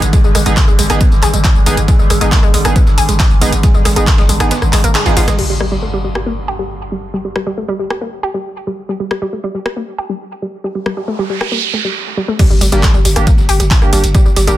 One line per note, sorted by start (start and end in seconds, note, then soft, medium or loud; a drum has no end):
0.00 0.13 G#1 medium
0.00 5.43 G2 medium
0.00 5.43 D3 medium
0.00 closed hi-hat medium
0.00 ride soft
0.00 tambourine soft
0.13 0.19 G#3 medium
0.13 kick loud
0.13 closed hi-hat medium
0.13 ride medium
0.13 tambourine soft
0.24 0.34 G#1 medium
0.24 0.33 G#3 medium
0.24 tambourine soft
0.35 0.45 G#1 loud
0.35 0.41 G#3 loud
0.35 cross-stick loud
0.35 snare medium
0.35 open hi-hat loud
0.35 ride medium
0.35 tambourine medium
0.46 0.57 G#1 medium
0.46 0.50 G#3 loud
0.46 0.56 B3 medium
0.46 0.56 D#4 medium
0.46 0.56 G#4 medium
0.46 closed hi-hat medium
0.46 tambourine soft
0.57 0.63 A#3 medium
0.57 kick loud
0.57 snare loud
0.57 clap loud
0.57 closed hi-hat medium
0.57 ride medium
0.57 tambourine soft
0.68 0.78 G#1 medium
0.68 0.74 G#3 loud
0.68 tambourine soft
0.79 0.89 G#1 loud
0.79 0.88 G#3 medium
0.79 open hi-hat loud
0.79 ride medium
0.79 tambourine medium
0.90 1.00 G#1 medium
0.90 0.99 B3 medium
0.90 0.99 D#4 medium
0.90 0.99 G#4 medium
0.90 0.96 G#4 medium
0.90 cross-stick loud
0.90 closed hi-hat medium
0.90 tambourine soft
1.01 1.07 B3 medium
1.01 kick loud
1.01 closed hi-hat medium
1.01 ride medium
1.01 tambourine soft
1.12 1.22 G#1 medium
1.12 snare soft
1.12 tambourine soft
1.23 1.33 G#1 loud
1.23 1.29 G#4 medium
1.23 clap medium
1.23 open hi-hat loud
1.23 ride medium
1.23 tambourine medium
1.34 1.44 G#1 medium
1.34 1.37 G#3 medium
1.34 closed hi-hat medium
1.34 tambourine soft
1.44 kick loud
1.44 snare loud
1.44 clap loud
1.44 closed hi-hat medium
1.44 ride medium
1.44 tambourine soft
1.55 1.66 G#1 medium
1.55 tambourine soft
1.66 1.77 G#1 loud
1.66 1.76 G#3 medium
1.66 1.76 B3 loud
1.66 1.76 D#4 medium
1.66 1.76 G#4 loud
1.66 open hi-hat loud
1.66 ride medium
1.66 tambourine medium
1.77 1.88 G#1 medium
1.77 closed hi-hat medium
1.77 tambourine soft
1.88 1.95 G#3 medium
1.88 kick loud
1.88 closed hi-hat medium
1.88 ride medium
1.88 tambourine soft
1.99 2.10 G#1 medium
1.99 2.09 G#3 medium
1.99 tambourine soft
2.10 2.21 G#1 loud
2.10 2.16 G#3 loud
2.10 cross-stick medium
2.10 open hi-hat loud
2.10 ride medium
2.10 tambourine medium
2.21 2.32 G#1 medium
2.21 2.25 G#3 loud
2.21 2.31 B3 medium
2.21 2.31 D#4 medium
2.21 2.31 G#4 medium
2.21 closed hi-hat medium
2.21 tambourine soft
2.32 2.38 A#3 medium
2.32 kick loud
2.32 snare loud
2.32 clap loud
2.32 closed hi-hat medium
2.32 ride medium
2.32 tambourine soft
2.43 2.53 G#1 medium
2.43 2.49 G#3 loud
2.43 ride soft
2.43 tambourine soft
2.54 2.64 G#1 loud
2.54 2.63 G#3 medium
2.54 open hi-hat loud
2.54 ride medium
2.54 tambourine medium
2.65 2.76 G#1 medium
2.65 2.74 B3 medium
2.65 2.74 D#4 medium
2.65 2.71 G#4 medium
2.65 2.74 G#4 medium
2.65 cross-stick medium
2.65 closed hi-hat medium
2.65 tambourine soft
2.76 2.82 B3 medium
2.76 kick loud
2.76 closed hi-hat medium
2.76 ride medium
2.76 tambourine soft
2.87 2.97 G#1 medium
2.87 snare soft
2.87 tambourine soft
2.98 3.08 G#1 loud
2.98 3.04 G#4 loud
2.98 open hi-hat loud
2.98 ride medium
2.98 tambourine medium
3.09 3.19 G#1 medium
3.09 3.12 G#3 medium
3.09 closed hi-hat medium
3.09 ride soft
3.09 tambourine soft
3.20 kick loud
3.20 snare loud
3.20 clap loud
3.20 closed hi-hat medium
3.20 open hi-hat medium
3.20 tambourine soft
3.31 3.41 G#1 medium
3.31 tambourine soft
3.41 3.52 G#1 loud
3.41 3.51 G#3 medium
3.41 3.51 B3 loud
3.41 3.51 D#4 medium
3.41 3.51 G#4 loud
3.41 open hi-hat loud
3.41 ride medium
3.41 tambourine medium
3.52 3.63 G#1 medium
3.52 closed hi-hat medium
3.52 ride soft
3.52 tambourine soft
3.63 3.70 G#3 medium
3.63 kick loud
3.63 closed hi-hat medium
3.63 ride loud
3.63 tambourine soft
3.74 3.85 G#1 medium
3.74 3.84 G#3 medium
3.74 tambourine soft
3.85 3.96 G#1 loud
3.85 3.92 G#3 loud
3.85 cross-stick medium
3.85 snare loud
3.85 open hi-hat loud
3.85 ride medium
3.85 tambourine medium
3.96 4.07 G#1 medium
3.96 4.00 G#3 loud
3.96 4.06 B3 medium
3.96 4.06 D#4 medium
3.96 4.06 G#4 medium
3.96 closed hi-hat medium
3.96 tambourine soft
4.07 4.14 A#3 medium
4.07 kick loud
4.07 clap loud
4.07 closed hi-hat medium
4.07 ride medium
4.07 tambourine soft
4.18 4.28 G#1 medium
4.18 4.24 G#3 loud
4.18 snare loud
4.18 ride medium
4.18 tambourine soft
4.29 4.40 G#1 loud
4.29 4.39 G#3 medium
4.29 open hi-hat loud
4.29 tambourine medium
4.40 4.51 G#1 medium
4.40 4.50 B3 medium
4.40 4.50 D#4 medium
4.40 4.46 G#4 medium
4.40 4.50 G#4 medium
4.40 cross-stick medium
4.40 closed hi-hat medium
4.40 ride medium
4.40 tambourine soft
4.51 4.57 B3 medium
4.51 snare loud
4.51 closed hi-hat medium
4.51 ride medium
4.51 tambourine soft
4.62 4.72 G#1 medium
4.62 cross-stick medium
4.62 tambourine soft
4.73 4.83 G#1 loud
4.73 4.79 G#3 medium
4.73 cross-stick medium
4.73 clap medium
4.73 open hi-hat loud
4.73 ride medium
4.73 tambourine medium
4.84 4.95 G#1 medium
4.84 4.90 A#3 loud
4.84 closed hi-hat medium
4.84 tambourine soft
4.95 5.01 G#3 medium
4.95 snare loud
4.95 clap loud
4.95 closed hi-hat medium
4.95 ride medium
4.95 tambourine soft
5.06 5.16 G#1 medium
5.06 5.15 B3 medium
5.06 5.15 D#4 medium
5.06 5.15 F4 medium
5.06 5.15 G#4 medium
5.06 snare loud
5.06 ride medium
5.06 tambourine soft
5.17 5.27 G#1 loud
5.17 5.26 B3 medium
5.17 5.26 D#4 medium
5.17 5.20 F4 loud
5.17 5.26 G#4 medium
5.17 snare loud
5.17 open hi-hat loud
5.17 ride medium
5.17 tambourine medium
5.28 5.38 G#1 medium
5.28 5.37 G#3 loud
5.28 cross-stick medium
5.28 snare loud
5.28 closed hi-hat medium
5.28 ride medium
5.28 tambourine soft
5.39 5.45 G3 medium
5.39 crash medium
5.39 impact medium
5.50 5.59 G3 medium
5.60 5.67 G3 medium
5.60 cross-stick medium
5.72 5.75 G3 loud
5.82 5.89 A3 medium
5.93 6.00 G3 loud
6.04 6.14 G3 medium
6.15 6.22 G4 medium
6.15 cross-stick medium
6.26 6.33 A#3 medium
6.48 6.54 G4 loud
6.59 6.63 G3 medium
6.92 7.01 G3 medium
7.14 7.20 G3 medium
7.25 7.34 G3 medium
7.36 7.42 G3 loud
7.36 cross-stick medium
7.47 7.50 G3 loud
7.58 7.64 A3 medium
7.69 7.75 G3 loud
7.79 7.89 G3 medium
7.90 7.97 G4 medium
7.90 cross-stick medium
8.01 8.08 A#3 medium
8.23 8.30 G4 medium
8.34 8.38 G3 medium
8.67 8.77 G3 medium
8.89 8.95 G3 medium
9.00 9.09 G3 medium
9.11 9.17 G3 medium
9.11 cross-stick medium
9.22 9.26 G3 loud
9.33 9.39 A3 medium
9.44 9.50 G3 loud
9.55 9.64 G3 medium
9.66 9.72 G4 medium
9.66 cross-stick loud
9.77 9.83 A#3 medium
9.98 10.05 G4 loud
10.09 10.13 G3 medium
10.42 10.52 G3 medium
10.64 10.70 G3 medium
10.64 noise sweep medium
10.75 10.85 G3 medium
10.86 10.92 G3 loud
10.86 cross-stick medium
10.97 11.01 G3 loud
11.08 11.14 A3 medium
11.19 11.25 G3 loud
11.30 11.39 G3 medium
11.41 11.47 G4 medium
11.41 cross-stick loud
11.52 11.58 A#3 medium
11.74 11.80 A3 medium
11.85 11.88 G3 medium
12.17 12.21 G3 loud
12.28 12.32 A3 loud
12.39 12.46 G3 medium
12.39 kick loud
12.39 closed hi-hat medium
12.39 crash loud
12.39 ride medium
12.39 tambourine soft
12.39 impact medium
12.50 12.61 G1 medium
12.50 12.60 G3 medium
12.50 tambourine soft
12.61 12.72 G1 loud
12.61 12.68 G3 loud
12.61 open hi-hat loud
12.61 ride medium
12.61 tambourine medium
12.72 12.83 G1 medium
12.72 12.76 G3 loud
12.72 12.82 A#3 medium
12.72 12.82 D4 medium
12.72 12.82 G4 medium
12.72 closed hi-hat medium
12.72 tambourine soft
12.83 12.89 A3 medium
12.83 kick loud
12.83 snare loud
12.83 clap loud
12.83 closed hi-hat medium
12.83 ride medium
12.83 tambourine soft
12.94 13.04 G1 medium
12.94 13.00 G3 loud
12.94 ride soft
12.94 tambourine soft
13.05 13.15 G1 loud
13.05 13.14 G3 medium
13.05 open hi-hat loud
13.05 ride medium
13.05 tambourine medium
13.16 13.27 G1 medium
13.16 13.26 A#3 medium
13.16 13.26 D4 medium
13.16 13.22 G4 medium
13.16 13.26 G4 medium
13.16 cross-stick medium
13.16 closed hi-hat medium
13.16 tambourine soft
13.27 13.33 A#3 medium
13.27 kick loud
13.27 closed hi-hat medium
13.27 ride medium
13.27 tambourine soft
13.38 13.48 G1 medium
13.38 snare soft
13.38 tambourine soft
13.49 13.59 G1 loud
13.49 13.55 G4 loud
13.49 open hi-hat loud
13.49 ride medium
13.49 tambourine medium
13.60 13.71 G1 medium
13.60 13.64 G3 medium
13.60 closed hi-hat medium
13.60 ride soft
13.60 tambourine soft
13.71 kick loud
13.71 snare loud
13.71 clap loud
13.71 closed hi-hat medium
13.71 open hi-hat medium
13.71 tambourine soft
13.82 13.92 G1 medium
13.82 13.91 A#3 medium
13.82 13.91 D4 medium
13.82 13.91 G4 medium
13.82 cross-stick medium
13.82 tambourine soft
13.93 14.03 G1 loud
13.93 14.02 G3 medium
13.93 14.02 A#3 medium
13.93 14.02 D4 medium
13.93 14.02 G4 medium
13.93 open hi-hat loud
13.93 ride medium
13.93 tambourine medium
14.04 14.14 G1 medium
14.04 closed hi-hat medium
14.04 ride soft
14.04 tambourine soft
14.15 14.21 G3 medium
14.15 kick loud
14.15 closed hi-hat medium
14.15 ride medium
14.15 tambourine soft
14.25 14.36 G1 medium
14.25 14.35 G3 medium
14.25 tambourine soft
14.36 14.47 G1 loud
14.36 14.43 G3 medium
14.36 snare medium
14.36 open hi-hat loud
14.36 ride medium
14.36 tambourine medium
14.47 14.57 G1 medium
14.47 14.51 G3 loud
14.47 14.57 A#3 medium
14.47 14.57 D4 medium
14.47 14.57 G4 medium
14.47 closed hi-hat medium
14.47 tambourine soft